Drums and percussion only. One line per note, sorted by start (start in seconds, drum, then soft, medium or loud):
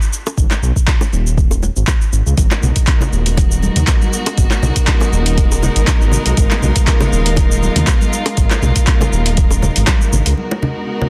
0.02 cabasa medium
0.13 cabasa medium
0.27 high bongo loud
0.27 cabasa medium
0.38 kick loud
0.38 cabasa medium
0.51 clap medium
0.51 low bongo medium
0.51 cabasa medium
0.63 cabasa medium
0.76 kick medium
0.76 cabasa medium
0.88 kick loud
0.88 clap loud
0.88 cabasa medium
1.01 high bongo medium
1.01 low bongo medium
1.01 cabasa medium
1.13 cabasa medium
1.27 cabasa medium
1.38 kick loud
1.38 cabasa medium
1.51 high bongo medium
1.51 cabasa medium
1.63 low bongo medium
1.63 cabasa medium
1.76 cabasa medium
1.87 kick loud
1.87 clap loud
1.87 low bongo medium
1.87 cabasa medium
2.02 cabasa medium
2.13 cabasa medium
2.27 cabasa medium
2.38 kick loud
2.38 closed hi-hat soft
2.38 high conga medium
2.38 cabasa medium
2.51 clap medium
2.51 low bongo medium
2.51 cabasa medium
2.63 low conga loud
2.63 cabasa medium
2.76 kick medium
2.76 closed hi-hat medium
2.76 cabasa medium
2.87 kick loud
2.87 clap loud
2.87 closed hi-hat soft
2.87 cabasa soft
3.01 high bongo medium
3.01 low bongo medium
3.01 low conga medium
3.01 cabasa medium
3.13 cabasa medium
3.26 closed hi-hat medium
3.26 cabasa medium
3.37 kick loud
3.37 closed hi-hat soft
3.37 low bongo medium
3.37 cabasa soft
3.52 cabasa medium
3.63 high conga medium
3.63 cabasa soft
3.76 closed hi-hat medium
3.76 low conga medium
3.76 cabasa medium
3.87 kick loud
3.87 clap loud
3.87 closed hi-hat soft
3.87 low bongo medium
3.87 cabasa medium
4.02 high conga medium
4.02 cabasa medium
4.13 cabasa medium
4.26 closed hi-hat medium
4.26 high bongo loud
4.26 cabasa soft
4.38 kick loud
4.38 closed hi-hat soft
4.38 cabasa medium
4.50 clap medium
4.50 low bongo medium
4.50 cabasa soft
4.63 low conga loud
4.63 cabasa medium
4.76 kick medium
4.76 closed hi-hat medium
4.76 cabasa medium
4.87 kick loud
4.87 clap loud
4.87 closed hi-hat soft
4.87 cabasa soft
5.00 high bongo medium
5.00 low bongo medium
5.00 high conga medium
5.00 cabasa soft
5.13 cabasa soft
5.26 closed hi-hat medium
5.26 cabasa soft
5.38 kick loud
5.38 closed hi-hat soft
5.38 cabasa soft
5.52 high bongo medium
5.52 cabasa medium
5.63 low bongo medium
5.63 low conga medium
5.63 cabasa medium
5.76 closed hi-hat medium
5.76 cabasa soft
5.87 kick loud
5.87 clap loud
5.87 closed hi-hat soft
5.87 low bongo medium
5.87 high conga medium
5.87 cabasa medium
6.02 cabasa soft
6.12 low conga medium
6.12 cabasa medium
6.26 closed hi-hat medium
6.26 cabasa soft
6.37 kick loud
6.37 closed hi-hat soft
6.37 high conga medium
6.37 cabasa medium
6.51 clap medium
6.51 low bongo medium
6.51 cabasa soft
6.62 low conga loud
6.62 cabasa soft
6.76 kick medium
6.76 closed hi-hat medium
6.76 cabasa medium
6.87 kick loud
6.87 clap loud
6.87 closed hi-hat soft
6.87 cabasa medium
7.01 high bongo medium
7.01 low bongo medium
7.01 low conga medium
7.01 cabasa soft
7.13 cabasa medium
7.26 closed hi-hat medium
7.26 cabasa soft
7.36 kick loud
7.36 closed hi-hat soft
7.36 low bongo medium
7.36 cabasa soft
7.52 cabasa medium
7.63 high conga medium
7.63 cabasa soft
7.76 closed hi-hat medium
7.76 low conga medium
7.76 cabasa soft
7.87 kick loud
7.87 clap loud
7.87 closed hi-hat soft
7.87 low bongo medium
7.87 cabasa medium
8.01 high conga medium
8.01 cabasa soft
8.13 cabasa medium
8.26 closed hi-hat medium
8.26 high bongo loud
8.26 cabasa soft
8.37 kick loud
8.37 closed hi-hat soft
8.37 high conga medium
8.37 cabasa medium
8.51 clap medium
8.51 low bongo medium
8.51 cabasa medium
8.62 low conga loud
8.62 cabasa medium
8.76 kick medium
8.76 closed hi-hat medium
8.76 cabasa medium
8.87 kick loud
8.87 clap loud
8.87 closed hi-hat soft
8.87 cabasa medium
9.01 high bongo medium
9.01 low bongo medium
9.01 high conga medium
9.01 low conga medium
9.01 cabasa soft
9.13 cabasa medium
9.26 closed hi-hat medium
9.26 cabasa medium
9.37 kick loud
9.37 closed hi-hat soft
9.37 high conga medium
9.37 cabasa soft
9.51 high bongo medium
9.51 cabasa medium
9.62 low bongo medium
9.62 low conga medium
9.62 cabasa medium
9.76 closed hi-hat medium
9.76 cabasa medium
9.87 kick loud
9.87 clap loud
9.87 closed hi-hat soft
9.87 low bongo medium
9.87 high conga medium
9.87 cabasa medium
10.01 cabasa soft
10.13 low conga medium
10.13 cabasa medium
10.26 closed hi-hat medium
10.26 cabasa soft
10.37 high conga medium
10.51 low bongo medium
10.62 low conga loud
11.02 low bongo medium
11.02 low conga medium